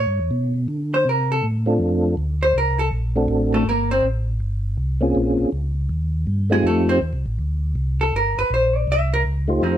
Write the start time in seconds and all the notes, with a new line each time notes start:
Already playing: C#5
0.07 G2
0.19 E2
0.31 B2
0.68 D3
0.94 C5
1.05 C3 A#4
1.32 A4
1.43 A2
1.66 A3 C4 D4 F4 A4
1.79 F2
2.17 D2
2.43 C5
2.55 C2 A#4
2.79 A4
2.91 A#1
3.16 A3 C4 D4 F#4 A4
3.28 A1
3.54 A3 A4
3.65 G1 A#4
3.69 A#3
3.91 C4 C5
4.03 A1
4.40 G1
4.77 C2
5.01 A#3 C4 C#4 F4 G#4
5.15 A#1
5.39 A#1
5.52 C#2
5.89 D#2
6.27 G2
6.50 G#3 A3 C4 D#4 F4 G4 G#4
6.63 F2 A3 A4
6.89 C4 C5
7.01 D#2
7.13 C2
7.26 A1
7.39 D2
7.75 C2
8.01 A4
8.13 G1 A#4
8.37 G1 B4
8.50 A#1 C5
8.76 D5
8.87 C2
8.92 E5
9.14 A#4
9.24 C#2
9.48 A3 D#4 F4 G4 C5
9.62 F2 F3 C4 D#4